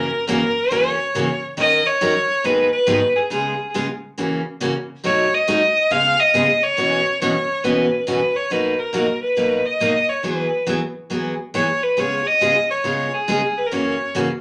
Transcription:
Already playing: fiddle A#4
0.27 steel-string acoustic guitar F#2 C#3 E3 A#3 C#4 F#4, fiddle A#4
0.71 steel-string acoustic guitar F#2 C#3 E3 A#3 C#4 F#4, fiddle C#5
1.15 steel-string acoustic guitar F#2 C#3 E3 A#3 C#4 F#4
1.57 steel-string acoustic guitar D#3 F#3 C#4 D#4 A#4, fiddle D#5
1.87 fiddle C#5
2.01 steel-string acoustic guitar D#3 F#3 C#4 D#4 A#4
2.44 steel-string acoustic guitar G#2 D#3 F#3 B3 D#4 G#4, fiddle B4
2.72 fiddle B4
2.87 steel-string acoustic guitar G#2 D#3 F#3 B3 D#4 G#4
3.16 fiddle G#4
3.30 steel-string acoustic guitar C#3 G#3 B3 F4 G#4, fiddle G#4
3.74 steel-string acoustic guitar C#3 G#3 B3 F4 G#4
4.18 steel-string acoustic guitar C#3 E3 A#3 C#4 F#4
4.60 steel-string acoustic guitar C#3 E3 A#3 C#4 F#4
5.04 steel-string acoustic guitar B2 F#3 A3 D#4 F#4, fiddle C#5
5.34 fiddle D#5
5.47 steel-string acoustic guitar B2 F#3 A3 D#4 F#4
5.91 steel-string acoustic guitar C#3 G#3 B3 F4 G#4, fiddle F5
6.20 fiddle D#5
6.34 steel-string acoustic guitar C#3 G#3 B3 F4 G#4
6.63 fiddle C#5
6.77 steel-string acoustic guitar F#2 B2 E3 B3 C#4 F#4
7.21 steel-string acoustic guitar F#2 B2 E3 B3 C#4 F#4, fiddle C#5
7.64 steel-string acoustic guitar F#2 B2 E3 B3 C#4 F#4, fiddle B4
8.07 steel-string acoustic guitar F#2 B2 E3 B3 C#4 F#4, fiddle B4
8.36 fiddle C#5
8.50 steel-string acoustic guitar B2 F#3 A#3 D#4 F#4, fiddle B4
8.79 fiddle A#4
8.93 steel-string acoustic guitar B2 F#3 A#3 D#4 F#4
9.22 fiddle B4
9.36 steel-string acoustic guitar B2 F#3 A#3 D#4 F#4
9.65 fiddle D#5
9.80 steel-string acoustic guitar B2 F#3 A#3 D#4 F#4
10.09 fiddle C#5
10.23 steel-string acoustic guitar E3 F#3 B3 E4 G#4, fiddle B4
10.67 steel-string acoustic guitar E3 F#3 B3 E4 G#4
11.10 steel-string acoustic guitar E3 F#3 B3 E4 G#4
11.54 steel-string acoustic guitar E3 F#3 B3 E4 G#4, fiddle C#5
11.83 fiddle B4
11.97 steel-string acoustic guitar C#3 G#3 B3 F4 G#4, fiddle C#5
12.27 fiddle D#5
12.41 steel-string acoustic guitar C#3 G#3 B3 F4 G#4
12.71 fiddle C#5
12.84 steel-string acoustic guitar C#3 G#3 B3 F4 G#4
13.14 fiddle G#4
13.28 steel-string acoustic guitar C#3 G#3 B3 F4 G#4
13.57 fiddle B4
13.66 fiddle A#4
13.71 steel-string acoustic guitar F#2 C#3 E3 A#3 C#4 F#4, fiddle C#5
14.15 steel-string acoustic guitar F#2 C#3 E3 A#3 C#4 F#4

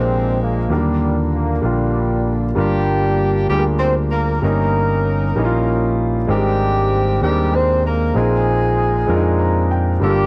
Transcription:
Already playing: fingered electric bass A#1, grand piano A#2 G#3 A#3 D4 F4 A#4, horn section C3 F3 G#3 C4
0.42 horn section A#3
0.69 fingered electric bass D#2, horn section A#2 G3, grand piano D3 F#3 A#3 D4 G4 A#4
0.73 horn section D3, grand piano G3
1.34 horn section A#3
1.61 fingered electric bass A#1, grand piano G3 A#3 D4 F4 G4, horn section G3
1.65 horn section A#2 D3
2.55 fingered electric bass G1, grand piano G2 G3 A#3 D4 F4 A#4, horn section G3 D4 G4
2.59 horn section A#3
3.49 fingered electric bass D2, grand piano G3 A#3 D4 F4 G#4, horn section G3 G4
3.59 grand piano A#4
3.79 horn section C4 C5
4.12 horn section A#3 A#4
4.42 fingered electric bass G1, grand piano G2 G3 A#3 C#4 D#4 A#4, horn section A#3 C#4 D#4 A#4
5.36 fingered electric bass A#1, grand piano G3 A#3 C#4 D#4 E4
5.45 grand piano F4
6.27 fingered electric bass G#1, grand piano G#2 G#3 C4 D4 G4 A#4, horn section G3 A#3 C4 G4
7.21 fingered electric bass D#2, horn section G3 G4, grand piano G#3 C4 D4 G4 A#4
7.54 horn section C4 C5
7.85 horn section A#3 A#4
8.14 fingered electric bass A#1, grand piano A#2 G#3 C4 D#4 F4 A#4, horn section G#3 C4 D#4 G#4
9.07 fingered electric bass F2, grand piano G#3 C4 D4 F4 A#4
9.15 grand piano D#4
9.39 grand piano A#5
9.71 grand piano G5
10.00 fingered electric bass G1, grand piano G2 G3 A#3 D4 F4 A4, horn section G3 A#3 D4 G4
10.10 grand piano A#4

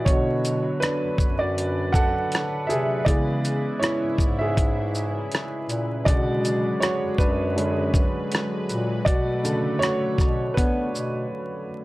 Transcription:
0.05 bass clarinet B2, analog synth pad D3 F#3 B4, upright piano D3 F#3 B3 F#4 C#5, kick, closed hi-hat
0.45 closed hi-hat, shaker
0.80 upright piano D4 B4, cross-stick, closed hi-hat
1.04 bass clarinet F#2
1.18 bass clarinet F#2, kick, shaker
1.39 upright piano F#4 D5
1.58 closed hi-hat
1.92 upright piano A4 F#5, kick, shaker
2.32 cross-stick, closed hi-hat
2.67 bass clarinet C3, upright piano G#4 E5, closed hi-hat, shaker
3.05 bass clarinet C#3, analog synth pad C#3 E4, upright piano E3 G#3 B3 G#4 D5, kick, closed hi-hat
3.45 closed hi-hat, shaker
3.79 upright piano E4 C#5, closed hi-hat
3.84 cross-stick
4.04 bass clarinet G#2
4.18 bass clarinet G#2, kick, shaker
4.39 upright piano G#4 E5
4.57 kick, closed hi-hat
4.95 shaker
5.32 cross-stick, closed hi-hat
5.69 bass clarinet A#2, closed hi-hat, shaker
6.05 bass clarinet B2, upright piano C#3 D3 G#3 F#4 D5, analog synth pad F#3 G#3 B4, kick, closed hi-hat
6.45 closed hi-hat, shaker
6.80 upright piano F#4 C#5, cross-stick, closed hi-hat
7.04 bass clarinet F#2
7.18 bass clarinet F#2, upright piano D4 B4, kick, shaker
7.56 upright piano D3 G#3 C#4, closed hi-hat
7.94 kick, shaker
8.32 cross-stick, closed hi-hat
8.69 bass clarinet A#2, closed hi-hat, shaker
9.05 bass clarinet B2, analog synth pad A3, upright piano F#4 D5, kick, closed hi-hat
9.44 upright piano C#3 D3 A3, closed hi-hat, shaker
9.79 upright piano F#4 C#5, closed hi-hat
9.83 cross-stick
10.04 bass clarinet B2
10.18 bass clarinet B2, kick, cross-stick, shaker
10.54 bass clarinet B3, upright piano D4 B4, kick
10.58 closed hi-hat
10.95 bass clarinet B2, shaker

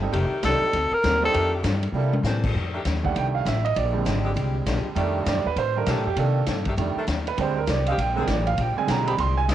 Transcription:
Already playing: upright bass G1
0.02 grand piano G3 C4 D4 D#4 A4
0.11 upright bass F1, steel-string acoustic guitar F2 D#3 A3, saxophone section D#3 A3 G4, kick, ride
0.16 steel-string acoustic guitar D4
0.31 muted upright bass stroke
0.43 upright bass C2, steel-string acoustic guitar F2 D#3 A3 D4, grand piano G3 C4 D4 D#4 A4, tenor saxophone A4, kick, snare, hi-hat pedal, ride
0.73 upright bass D2, steel-string acoustic guitar D3 A3 C4 F#4, kick, ride
0.91 tenor saxophone A#4, muted upright bass stroke
1.03 upright bass D#2, steel-string acoustic guitar D3 A3 C4 F#4, kick, snare, hi-hat pedal, ride
1.22 grand piano G3 C4 D4 D#4 C5, tenor saxophone A4
1.32 steel-string acoustic guitar F2 D#3 A3 D4, upright bass F2, saxophone section D#3 A3 D4 G4, kick, ride
1.63 steel-string acoustic guitar F2 D#3 A3 D4, upright bass G2, kick, snare, hi-hat pedal, ride
1.83 ride
1.92 upright bass C3, steel-string acoustic guitar C3 A#3 E4, grand piano G3 A#3 D4 E4
1.97 grand piano A4, steel-string acoustic guitar A4
2.13 high tom
2.23 upright bass A2, steel-string acoustic guitar C3 A#3 E4 A4, saxophone section E3 D4 A#4 C5, snare, hi-hat pedal
2.44 kick, crash
2.55 upright bass F2, steel-string acoustic guitar F2 D#3 A3 D4, kick
2.73 saxophone section D#3 A3 D4 G4
2.85 upright bass D#2, steel-string acoustic guitar F2 D#3 A3 D4, kick, snare, hi-hat pedal, ride
3.04 grand piano D#3 G3 A3 D4 F#5, kick
3.14 upright bass C2, steel-string acoustic guitar F2 D#3 A3 D4, grand piano G5, kick, ride
3.35 grand piano F5
3.45 upright bass A1, steel-string acoustic guitar F2 D#3 A3 D4, grand piano E5, kick, snare, hi-hat pedal, ride
3.65 grand piano D#5, ride
3.74 upright bass A#1, steel-string acoustic guitar A#2 G#3 D4 G4, grand piano D5, kick, ride
3.93 grand piano D3 G3 G#3 C4
4.05 upright bass G#1, steel-string acoustic guitar A#2 G#3 D4 G4, kick, snare, hi-hat pedal, ride
4.23 saxophone section D3 G#3 C4 G4
4.34 upright bass C2, steel-string acoustic guitar A#2 G#3 D4 G4, kick, ride
4.66 upright bass A#1, steel-string acoustic guitar A#2 G#3 D4 G4, kick, snare, hi-hat pedal, ride
4.84 muted upright bass stroke
4.95 steel-string acoustic guitar F2 D#3 A3 D4, upright bass F2, grand piano D#3 G3 A3 D4, saxophone section D#3 A3 D4 G4, kick, ride
5.25 steel-string acoustic guitar F2 D#3 A3 D4, upright bass G2, grand piano D5, kick, snare, hi-hat pedal, ride
5.36 upright bass F2
5.45 upright bass D#2, grand piano B4
5.56 steel-string acoustic guitar F2 D#3 A3 D4, upright bass A2, grand piano C5, kick, ride
5.76 grand piano D#3 G3 A3 D4 A#4
5.86 steel-string acoustic guitar F2 D#3 A3 D4, upright bass B2, saxophone section D#3 A3 D4 G4, grand piano A4, kick, snare, hi-hat pedal, ride
5.96 upright bass A2
6.06 upright bass F2, grand piano G4
6.16 upright bass C3, steel-string acoustic guitar C3 A#3 D#4 G4, grand piano D#3 A#3 D4 A4, kick, ride
6.46 upright bass G2, steel-string acoustic guitar C3 A#3 D#4 G4, kick, snare, hi-hat pedal, ride
6.65 saxophone section D#3 A3 D4 G4, kick, ride
6.76 steel-string acoustic guitar F2 D#3 A3 D4, upright bass F2, grand piano D#3 G3 A3 D4, kick, ride
6.96 saxophone section D#3 A3 D4 A4, muted upright bass stroke
7.07 upright bass D#2, steel-string acoustic guitar F2 D#3 A3 D4, kick, snare, hi-hat pedal, ride
7.27 grand piano B4, ride
7.37 upright bass D2, steel-string acoustic guitar A#2 G#3 D4 G4, grand piano D3 G3 G#3 C4, kick, ride
7.41 grand piano C5
7.58 grand piano A#4
7.66 upright bass C2, steel-string acoustic guitar A#2 G#3 D4 G4, grand piano D5, kick, snare, hi-hat pedal, ride
7.86 saxophone section D3 G#3 C4 G4, grand piano F5, ride
7.97 upright bass A#1, steel-string acoustic guitar A#2 G#3 D4 G4, grand piano G5, kick, ride
8.16 grand piano D3 G3 G#3 C4 A#4, saxophone section D3 G#3 C4 G#4
8.27 upright bass A1, steel-string acoustic guitar A#2 G#3 D4 G4, grand piano D5, kick, snare, hi-hat pedal, ride
8.47 grand piano F5, ride
8.57 upright bass A#1, steel-string acoustic guitar A#2 G#3 D4 G4, grand piano G5, kick, ride
8.77 grand piano D3 G3 G#3 C4 G#5, muted upright bass stroke
8.88 upright bass B1, steel-string acoustic guitar A#2 G#3 D4 G4, grand piano A#5, kick, snare, hi-hat pedal, ride
9.06 saxophone section D3 G#3 C4 G4, grand piano B5, ride
9.18 upright bass C2, steel-string acoustic guitar A#2 G#3 D4 G4, grand piano C6, kick, ride
9.38 grand piano G#5
9.48 upright bass D2, steel-string acoustic guitar A#2 G#3 D4 G4, saxophone section D3 G#3 C4 D4, kick, snare, hi-hat pedal, ride

